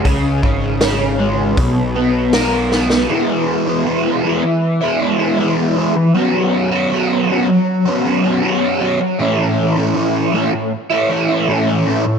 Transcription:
<<
  \new Staff \with { instrumentName = "Overdriven electric guitar" } { \time 4/4 \key cis \mixolydian \tempo 4 = 79 cis8 cis8 cis'8 gis8 b,8 b8 ais'8 b8 | \key e \lydian <e gis b e'>8. <gis b e'>16 <e gis b e'>8 <e gis b e'>8. <gis b e'>16 <e gis b e'>16 <gis b e'>16 <e gis b e'>8 <e gis b e'>8 | <fis b cis' fis'>8. <b cis' fis'>16 <fis b cis' fis'>8 <fis b cis' fis'>8. <b cis' fis'>16 <fis b cis' fis'>16 <b cis' fis'>16 <fis b cis' fis'>8 <fis b cis' fis'>8 | <a, e a cis' e'>8. <a cis' e'>16 <a, e a cis' e'>8 <e a cis' e'>8. <a cis' e'>16 <e a cis' e'>16 <a cis' e'>16 <a, e a cis' e'>8 <e a cis' e'>8 | }
  \new Staff \with { instrumentName = "Picked electric bass" } { \clef bass \time 4/4 \key cis \mixolydian cis,8 gis,,4. b,,2 | \key e \lydian r1 | r1 | r1 | }
  \new DrumStaff \with { instrumentName = "Drums" } \drummode { \time 4/4 <hho bd>8 bd8 <hho sn>4 <hho bd>4 <hho sn>8 sn16 sn16 | r4 r4 r4 r4 | r4 r4 r4 r4 | r4 r4 r4 r4 | }
>>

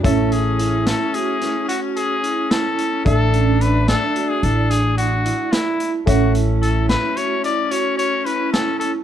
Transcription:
<<
  \new Staff \with { instrumentName = "Grand piano" } { \time 11/8 \key a \major \tempo 4 = 110 <a e' cis'' e''>1~ <a e' cis'' e''>4. | <a a' d'' e''>1~ <a a' d'' e''>4. | <a a' cis'' e''>1~ <a a' cis'' e''>4. | }
  \new Staff \with { instrumentName = "Trumpet" } { \time 11/8 \key a \major a'8 gis'4 a'8 gis'4 fis'8 gis'4 a'4 | a'4 b'8 a'8. gis'16 a'8 gis'8 fis'4 e'8. r16 | fis'8 r8 a'8 b'8 cis''8 d''8 cis''8 cis''8 b'8 a'8 a'8 | }
  \new Staff \with { instrumentName = "Vibraphone" } { \time 11/8 \key a \major cis'8 e'8 e'4 fis'8 e'8 fis'4 e'8 e'4 | d'8 cis'8 d'4 fis'8 e'8 d'4 e'8 e'4 | cis'8 e'8 e'4 fis'8 e'8 fis'4 e'8 r4 | }
  \new Staff \with { instrumentName = "Alto saxophone" } { \time 11/8 \key a \major cis'1~ cis'4. | d'1~ d'4 r8 | cis'1~ cis'4. | }
  \new Staff \with { instrumentName = "Upright bass" } { \clef bass \time 11/8 \key a \major a,,2 r2. r8 | a,,2 r8 a,,2 r4 | a,,2 r2. r8 | }
  \new DrumStaff \with { instrumentName = "Drums" } \drummode { \time 11/8 <hh bd>8 hh8 hh8 <hh sn>8 hh8 <hh sn>8 hh8 hh8 hh8 <hh sn>8 hh8 | <hh bd>8 hh8 hh8 <hh sn>8 hh8 hh8 hh8 hh8 hh8 <hh sn>8 hh8 | <hh bd>8 hh8 hh8 <hh sn>8 hh8 hh8 hh8 hh8 hh8 <hh sn>8 hh8 | }
>>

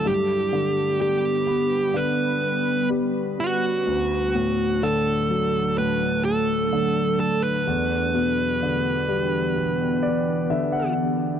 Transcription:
<<
  \new Staff \with { instrumentName = "Lead electric guitar" } { \time 4/4 \key d \major \tempo 4 = 63 g'4 g'4 b'4 r8 fis'8~ | fis'4 a'4 b'8 a'4 a'16 b'16~ | b'2.~ b'8 r8 | }
  \new Staff \with { instrumentName = "Ambient pad" } { \time 4/4 \key d \major << { <g b b'>1 | <fis a a'>1 | <e b g'>1 | } \\ { d'2 cis'2 | d'1~ | d'1 | } >> }
  \new Staff \with { instrumentName = "Grand piano" } { \time 4/4 \key d \major r1 | r1 | r2 r8 d''8 e''16 fis''8. | }
  \new Staff \with { instrumentName = "Grand piano" } { \clef bass \time 4/4 \key d \major g,8 d8 g8 b8 d4 g4 | d,8 a,8 d8 fis8 a,4 d4 | e,8 b,8 d8 g8 b,4 d4 | }
>>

